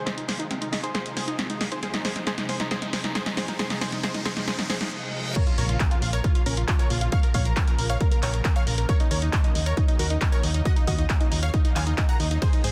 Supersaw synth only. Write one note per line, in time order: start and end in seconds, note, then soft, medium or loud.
0.06 0.14 G#4 medium
0.06 0.14 C5 medium
0.17 0.25 D#4 medium
0.28 0.36 G#4 medium
0.28 0.36 C5 medium
0.39 0.47 D#4 medium
0.61 0.69 D#4 medium
0.72 0.80 D#4 medium
0.83 0.91 G#4 medium
0.83 0.91 C5 medium
0.94 1.02 G#4 medium
0.94 1.02 C5 loud
1.05 1.13 D#4 medium
1.17 1.24 G#4 medium
1.17 1.24 C5 medium
1.28 1.35 D#4 medium
1.50 1.57 D#4 medium
1.61 1.68 D#4 medium
1.72 1.79 G#4 medium
1.72 1.79 C5 medium
1.83 1.90 G#4 medium
1.83 1.90 C5 loud
1.94 2.01 D#4 medium
2.05 2.12 G#4 medium
2.05 2.12 C5 medium
2.16 2.23 D#4 medium
2.27 2.35 G#4 medium
2.27 2.35 C5 loud
2.38 2.46 D#4 medium
2.49 2.56 G#4 medium
2.49 2.56 C5 medium
2.60 2.68 D#4 medium
2.71 2.79 G#4 medium
2.71 2.79 C5 loud
2.82 2.90 D#4 medium
2.93 3.01 G#4 medium
2.93 3.01 C5 medium
3.04 3.12 D#4 medium
3.15 3.23 G#4 medium
3.15 3.23 C5 loud
3.26 3.34 D#4 medium
3.37 3.45 G#4 medium
3.37 3.45 C5 medium
3.48 3.56 D#4 medium
3.59 3.67 G#4 medium
3.59 3.67 C5 loud
3.70 3.78 D#4 medium
3.81 3.89 G#4 medium
3.81 3.89 C5 loud
3.92 4.00 D#4 medium
4.03 4.11 G#4 medium
4.03 4.11 C5 loud
4.15 4.22 D#4 medium
4.25 4.33 G#4 medium
4.25 4.33 C5 loud
4.37 4.44 D#4 medium
4.48 4.55 G#4 medium
4.48 4.55 C5 loud
4.59 4.66 D#4 medium
4.70 4.77 G#4 medium
4.70 4.77 C5 loud
4.81 4.88 D#4 medium
5.36 5.43 A#4 medium
5.36 5.43 C#5 loud
5.47 5.54 F4 medium
5.58 5.65 A#4 medium
5.58 5.65 C#5 medium
5.69 5.76 F4 medium
5.91 5.99 F4 medium
6.02 6.10 F4 medium
6.13 6.21 A#4 medium
6.13 6.21 C#5 loud
6.24 6.32 F4 medium
6.35 6.43 F4 medium
6.46 6.54 C#4 medium
6.46 6.54 A#4 loud
6.57 6.65 F4 medium
6.68 6.76 F4 medium
6.79 6.87 A#4 medium
6.79 6.87 C#5 medium
6.90 6.98 F4 medium
7.01 7.09 F4 medium
7.12 7.20 C#5 medium
7.12 7.20 F5 loud
7.24 7.31 A#4 medium
7.35 7.42 C#5 medium
7.35 7.42 F5 medium
7.46 7.53 A#4 medium
7.68 7.75 A#4 medium
7.79 7.86 A#4 medium
7.90 7.97 C#5 medium
7.90 7.97 F5 loud
8.01 8.08 A#4 medium
8.12 8.19 A#4 medium
8.23 8.30 A#4 medium
8.23 8.30 C#5 loud
8.34 8.41 A#4 medium
8.45 8.52 A#4 medium
8.56 8.63 C#5 medium
8.56 8.63 F5 medium
8.67 8.74 A#4 medium
8.78 8.85 A#4 medium
8.89 8.96 A#4 medium
8.89 8.96 C#5 loud
9.00 9.07 D#4 medium
9.11 9.18 A#4 medium
9.11 9.18 C#5 medium
9.22 9.30 D#4 medium
9.44 9.52 D#4 medium
9.55 9.62 D#4 medium
9.66 9.74 A#4 medium
9.66 9.74 C#5 loud
9.77 9.85 D#4 medium
9.88 9.96 D#4 medium
9.99 10.07 F#4 medium
9.99 10.07 A#4 medium
10.10 10.18 D#4 medium
10.32 10.40 A#4 medium
10.32 10.40 C#5 medium
10.43 10.51 D#4 medium
10.54 10.62 D#4 medium
10.65 10.73 F#4 medium
10.65 10.73 D#5 loud
10.76 10.84 D#4 medium
10.87 10.95 F#4 medium
10.87 10.95 D#5 medium
10.98 11.06 D#4 medium
11.21 11.28 D#4 medium
11.31 11.39 D#4 medium
11.43 11.50 C#5 medium
11.43 11.50 F5 loud
11.54 11.61 D#4 medium
11.65 11.72 D#4 medium
11.76 11.83 F5 medium
11.76 11.83 G#5 medium
11.87 11.94 D#4 medium
11.98 12.05 D#4 medium
12.09 12.16 F#5 medium
12.09 12.16 A#5 medium
12.20 12.27 D#4 medium
12.31 12.38 D#4 medium
12.42 12.49 G#4 medium
12.42 12.49 C5 loud
12.53 12.60 D#4 medium
12.64 12.71 G#4 medium
12.64 12.71 C5 medium